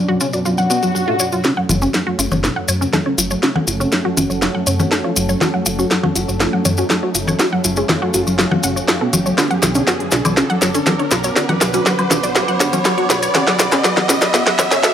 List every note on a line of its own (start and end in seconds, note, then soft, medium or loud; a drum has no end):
0.00 1.41 B2 medium
0.00 1.41 F#3 medium
0.00 1.41 C#4 medium
0.00 1.41 D4 medium
0.00 1.45 F#5 medium
0.00 3.16 B5 medium
0.00 1.45 D6 medium
0.08 0.15 F#3 medium
0.08 0.20 F#4 loud
0.20 0.27 C#4 medium
0.20 0.33 F4 medium
0.20 maracas medium
0.33 0.40 F#3 medium
0.33 0.39 D5 medium
0.33 maracas soft
0.45 0.52 F#3 medium
0.45 0.54 F4 medium
0.45 swell medium
0.45 maracas soft
0.58 0.65 F#3 medium
0.58 0.70 F#5 loud
0.58 maracas soft
0.70 0.77 B3 medium
0.70 0.76 F#4 medium
0.70 maracas medium
0.82 0.89 F#3 medium
0.82 0.91 F#4 medium
0.82 maracas soft
0.95 1.02 F#3 medium
0.95 1.07 F#4 medium
0.95 maracas soft
1.08 1.14 A3 medium
1.08 1.16 F4 loud
1.19 1.27 F#3 medium
1.19 1.25 C#5 medium
1.19 maracas medium
1.32 1.39 F#3 medium
1.32 1.44 F4 medium
1.32 maracas soft
1.44 9.34 F#3 medium
1.44 9.34 A3 medium
1.44 1.51 C#4 loud
1.44 14.94 C#4 medium
1.44 1.54 F#4 medium
1.44 10.76 A4 medium
1.44 snare soft
1.44 riser medium
1.44 maracas soft
1.57 1.64 F#3 medium
1.57 1.69 F#5 loud
1.68 1.88 F#1 medium
1.68 1.76 F#3 medium
1.68 1.78 F4 medium
1.68 9.38 C#5 medium
1.68 closed hi-hat loud
1.68 low conga medium
1.68 maracas medium
1.82 1.91 C#4 loud
1.82 1.89 C#4 medium
1.82 maracas medium
1.94 2.01 F#3 medium
1.94 snare soft
1.94 maracas soft
2.04 2.13 F#3 medium
2.04 2.18 F#4 loud
2.04 10.12 A5 medium
2.19 2.28 F#1 medium
2.19 2.26 C#4 medium
2.19 2.31 F4 medium
2.19 closed hi-hat loud
2.19 maracas medium
2.32 2.50 F#1 loud
2.32 2.38 F#3 medium
2.32 2.37 C#5 medium
2.32 6.89 F#5 medium
2.32 low conga medium
2.32 maracas soft
2.44 2.51 B3 medium
2.44 2.53 F4 medium
2.44 snare soft
2.44 maracas soft
2.56 2.63 F#3 medium
2.56 2.68 F#5 loud
2.68 2.87 F#2 medium
2.68 2.75 F#3 medium
2.68 2.78 C#5 loud
2.68 closed hi-hat loud
2.68 maracas medium
2.81 2.90 C#4 loud
2.81 2.88 C#4 medium
2.81 maracas medium
2.93 3.00 F#3 medium
2.93 3.05 A4 loud
2.93 snare soft
2.93 low conga medium
2.93 maracas soft
3.06 3.13 C#4 medium
3.06 3.11 C#5 medium
3.18 3.37 F#1 medium
3.18 3.25 F#3 medium
3.18 3.30 F4 medium
3.18 closed hi-hat loud
3.18 maracas medium
3.31 3.37 F#3 medium
3.31 3.36 C#5 loud
3.31 maracas medium
3.43 3.50 C#4 medium
3.43 3.52 F#4 medium
3.43 snare soft
3.43 maracas soft
3.56 3.62 F#3 medium
3.56 3.67 F#5 medium
3.56 low conga medium
3.67 3.86 F#1 loud
3.67 3.75 F#3 medium
3.67 3.77 F4 medium
3.67 closed hi-hat loud
3.67 maracas medium
3.80 3.89 C#4 loud
3.80 3.87 C#4 medium
3.80 maracas soft
3.92 3.99 F#3 medium
3.92 snare medium
3.92 maracas soft
4.05 4.12 F#3 medium
4.05 4.17 F#4 loud
4.17 4.27 F#1 medium
4.17 4.24 C#4 medium
4.17 4.29 F4 medium
4.17 closed hi-hat loud
4.17 low conga medium
4.17 maracas medium
4.30 4.48 F#1 loud
4.30 4.36 F#3 medium
4.30 4.35 C#5 medium
4.30 maracas medium
4.42 4.49 F#3 medium
4.42 4.51 F4 medium
4.42 snare medium
4.42 maracas soft
4.55 4.61 F#3 medium
4.55 4.66 F#5 loud
4.67 4.85 F#2 medium
4.67 4.74 C#4 medium
4.67 4.76 C#5 loud
4.67 closed hi-hat loud
4.67 maracas medium
4.79 4.86 F#3 medium
4.79 4.88 C#4 loud
4.79 low conga medium
4.79 maracas medium
4.91 4.98 F#3 medium
4.91 5.04 A4 medium
4.91 snare medium
4.91 maracas soft
5.04 5.11 F4 medium
5.04 5.10 C#5 medium
5.16 5.35 F#1 medium
5.16 5.23 F#3 medium
5.16 5.29 F4 medium
5.16 closed hi-hat loud
5.16 maracas loud
5.29 5.36 F#3 medium
5.29 5.34 C#5 loud
5.29 maracas medium
5.41 5.48 F#4 loud
5.41 5.50 F#4 medium
5.41 snare medium
5.41 low conga medium
5.41 maracas soft
5.54 5.61 F#3 medium
5.54 5.65 F#5 loud
5.66 5.84 F#1 loud
5.66 5.73 F#3 medium
5.66 5.75 F4 medium
5.66 closed hi-hat loud
5.66 maracas loud
5.79 5.87 C#4 loud
5.79 5.85 F#4 medium
5.79 maracas medium
5.91 5.98 F#3 medium
5.91 snare medium
5.91 maracas soft
6.03 6.10 F#3 medium
6.03 6.15 F#4 loud
6.03 low conga medium
6.16 6.25 F#1 medium
6.16 6.28 F4 medium
6.16 6.23 F#4 medium
6.16 closed hi-hat loud
6.16 maracas medium
6.28 6.46 F#1 loud
6.28 6.35 F#3 medium
6.28 6.33 C#5 medium
6.28 maracas soft
6.40 6.47 F4 medium
6.40 6.49 F4 medium
6.40 snare medium
6.40 maracas soft
6.53 6.60 F#3 medium
6.53 6.65 F#5 loud
6.65 6.84 F#2 medium
6.65 6.72 F#3 medium
6.65 6.74 C#5 loud
6.65 closed hi-hat loud
6.65 low conga medium
6.65 maracas medium
6.74 6.87 C#4 loud
6.74 6.84 F#4 medium
6.74 9.38 F5 medium
6.74 maracas medium
6.90 6.97 F#3 medium
6.90 7.02 A4 loud
6.90 snare medium
6.90 maracas soft
7.03 7.09 F#4 medium
7.03 7.08 C#5 medium
7.15 7.33 F#1 medium
7.15 7.22 F#3 medium
7.15 7.27 F4 medium
7.15 closed hi-hat loud
7.15 maracas loud
7.27 7.34 F#3 medium
7.27 7.33 C#5 loud
7.27 low conga medium
7.27 maracas medium
7.39 7.46 F#4 medium
7.39 7.49 F#4 medium
7.39 snare medium
7.39 maracas soft
7.52 7.59 F#3 medium
7.52 7.64 F#5 loud
7.64 7.83 F#1 loud
7.64 7.71 F#3 medium
7.64 7.74 F4 medium
7.64 closed hi-hat loud
7.64 maracas medium
7.76 7.86 C#4 loud
7.76 7.84 G#4 medium
7.76 maracas medium
7.89 7.96 F#3 medium
7.89 snare medium
7.89 low conga medium
7.89 maracas soft
8.02 8.08 F#3 medium
8.02 8.13 F#4 loud
8.14 8.23 F#1 medium
8.14 8.26 F4 medium
8.14 8.21 F#4 medium
8.14 closed hi-hat loud
8.14 maracas medium
8.27 8.45 F#1 loud
8.27 8.33 F#3 medium
8.27 8.32 C#5 medium
8.27 maracas medium
8.39 8.46 F#3 medium
8.39 8.48 F4 medium
8.39 snare medium
8.39 maracas soft
8.51 8.58 F#3 medium
8.51 8.62 F#5 loud
8.51 low conga medium
8.63 8.82 F#1 medium
8.63 8.70 C#4 medium
8.63 8.76 F#5 loud
8.63 closed hi-hat loud
8.63 maracas medium
8.76 8.83 F#3 medium
8.76 8.88 C#5 medium
8.76 maracas medium
8.88 8.95 F#3 medium
8.88 8.97 A5 medium
8.88 snare medium
8.88 maracas soft
9.01 9.08 B3 medium
9.01 9.13 A4 medium
9.13 9.32 F#1 medium
9.13 9.20 F#3 medium
9.13 9.25 F#4 medium
9.13 closed hi-hat loud
9.13 low conga medium
9.13 maracas loud
9.26 9.32 F#3 medium
9.26 9.31 C#5 medium
9.26 maracas soft
9.38 14.94 D3 medium
9.38 14.94 B3 medium
9.38 9.45 D4 medium
9.38 9.47 F#4 medium
9.38 14.94 D6 medium
9.38 snare medium
9.38 closed hi-hat soft
9.38 low woodblock medium
9.38 maracas soft
9.51 9.57 F#3 medium
9.51 9.62 F#5 loud
9.51 closed hi-hat soft
9.62 9.81 B1 loud
9.62 9.70 F#3 medium
9.62 9.72 F4 medium
9.62 snare medium
9.62 closed hi-hat loud
9.62 low conga medium
9.62 maracas medium
9.69 14.94 F#5 medium
9.75 9.84 C#4 loud
9.75 9.82 D4 medium
9.75 closed hi-hat medium
9.75 maracas medium
9.87 9.94 F#3 medium
9.87 10.00 F#4 loud
9.87 snare medium
9.87 closed hi-hat medium
9.87 maracas soft
10.00 10.07 F#3 medium
10.00 closed hi-hat soft
10.11 10.22 B1 medium
10.11 10.19 D4 medium
10.11 10.24 F4 medium
10.11 snare medium
10.11 closed hi-hat loud
10.11 maracas medium
10.25 10.43 B1 loud
10.25 10.32 F#3 medium
10.25 10.30 D5 medium
10.25 closed hi-hat medium
10.25 low conga medium
10.25 low woodblock medium
10.25 maracas soft
10.33 10.44 C#4 medium
10.33 10.46 F4 medium
10.33 14.94 B5 medium
10.33 snare medium
10.33 closed hi-hat medium
10.33 maracas soft
10.50 10.56 F#3 medium
10.50 10.61 F#5 loud
10.50 closed hi-hat soft
10.62 10.80 F#1 medium
10.62 10.69 F#3 medium
10.62 10.71 C#5 loud
10.62 snare medium
10.62 closed hi-hat loud
10.62 maracas medium
10.75 10.83 C#4 loud
10.75 10.81 D4 medium
10.75 closed hi-hat medium
10.75 maracas medium
10.86 10.94 F#3 medium
10.86 10.99 A4 loud
10.86 snare medium
10.86 closed hi-hat medium
10.86 low conga medium
10.86 maracas soft
10.99 11.06 D4 medium
10.99 11.05 C#5 medium
10.99 closed hi-hat soft
11.11 11.30 B1 medium
11.11 11.18 F#3 medium
11.11 11.24 F4 medium
11.11 snare medium
11.11 closed hi-hat loud
11.11 low woodblock medium
11.11 maracas medium
11.24 11.31 F#3 medium
11.24 11.29 C#5 loud
11.24 closed hi-hat medium
11.24 maracas soft
11.36 11.43 D4 medium
11.36 11.45 F#4 medium
11.36 snare medium
11.36 closed hi-hat medium
11.36 maracas soft
11.49 11.56 F#3 medium
11.49 11.60 F#5 loud
11.49 closed hi-hat soft
11.49 low conga medium
11.61 11.80 B1 loud
11.61 11.68 F#3 medium
11.61 11.70 F4 medium
11.61 snare medium
11.61 closed hi-hat loud
11.61 maracas medium
11.74 11.82 C#4 loud
11.74 11.80 F#4 medium
11.74 closed hi-hat medium
11.74 maracas soft
11.86 11.93 F#3 medium
11.86 11.98 F#4 loud
11.86 snare medium
11.86 closed hi-hat medium
11.86 maracas soft
11.99 12.05 F#3 medium
11.99 closed hi-hat soft
11.99 low woodblock medium
12.11 12.20 B1 medium
12.11 12.17 D4 medium
12.11 12.23 F4 medium
12.11 snare medium
12.11 closed hi-hat loud
12.11 low conga medium
12.11 maracas medium
12.23 12.42 B1 loud
12.23 12.30 F#3 medium
12.23 12.29 D5 medium
12.23 closed hi-hat medium
12.23 maracas soft
12.35 12.42 F#3 medium
12.35 12.45 F4 medium
12.35 snare medium
12.35 closed hi-hat medium
12.35 maracas soft
12.48 12.55 F#3 medium
12.48 12.60 F#5 loud
12.48 closed hi-hat soft
12.60 12.79 F#1 medium
12.60 12.67 D4 medium
12.60 12.69 C#5 loud
12.60 snare medium
12.60 closed hi-hat loud
12.60 maracas medium
12.73 12.80 F#3 medium
12.73 12.82 C#4 loud
12.73 closed hi-hat medium
12.73 low conga medium
12.73 maracas medium
12.85 12.92 F#3 medium
12.85 12.97 A4 loud
12.85 snare medium
12.85 closed hi-hat medium
12.85 low woodblock medium
12.85 maracas soft
12.98 13.04 F#4 medium
12.98 13.03 C#5 medium
12.98 closed hi-hat soft
13.10 13.28 B1 medium
13.10 13.17 F#3 medium
13.10 13.22 F4 medium
13.10 snare medium
13.10 closed hi-hat loud
13.10 maracas medium
13.22 13.29 F#3 medium
13.22 13.28 C#5 loud
13.22 closed hi-hat medium
13.22 maracas soft
13.34 13.41 C#4 loud
13.34 13.44 F#4 medium
13.34 snare medium
13.34 closed hi-hat medium
13.34 low conga loud
13.34 maracas soft
13.47 13.54 F#3 medium
13.47 13.59 F#5 loud
13.47 snare medium
13.47 closed hi-hat soft
13.59 13.78 B1 loud
13.59 13.66 F#3 medium
13.59 13.68 F4 medium
13.59 snare medium
13.59 closed hi-hat loud
13.59 maracas medium
13.72 13.81 C#4 loud
13.72 13.79 C#4 medium
13.72 snare medium
13.72 closed hi-hat medium
13.72 low woodblock medium
13.72 maracas soft
13.84 13.91 F#3 medium
13.84 13.96 F#4 loud
13.84 snare medium
13.84 closed hi-hat medium
13.84 maracas soft
13.97 14.03 F#3 medium
13.97 snare medium
13.97 closed hi-hat soft
13.97 low conga loud
14.09 14.18 B1 medium
14.09 14.16 C#4 medium
14.09 14.21 F4 medium
14.09 snare medium
14.09 closed hi-hat loud
14.09 maracas loud
14.21 14.40 B1 loud
14.21 14.28 F#3 medium
14.21 14.27 D5 medium
14.21 snare medium
14.21 closed hi-hat medium
14.21 maracas soft
14.34 14.41 B3 medium
14.34 14.43 F4 medium
14.34 snare loud
14.34 closed hi-hat medium
14.34 maracas soft
14.46 14.53 F#3 medium
14.46 14.58 F#5 loud
14.46 snare medium
14.46 closed hi-hat soft
14.58 14.77 F#1 medium
14.58 14.65 F#3 medium
14.58 14.68 C#5 loud
14.58 snare loud
14.58 closed hi-hat loud
14.58 low conga loud
14.58 low woodblock medium
14.58 maracas medium
14.71 14.80 C#4 loud
14.71 14.78 C#4 medium
14.71 snare medium
14.71 closed hi-hat medium
14.71 maracas soft
14.83 14.90 F#3 medium
14.83 14.94 A4 loud
14.83 snare loud
14.83 closed hi-hat medium
14.83 maracas soft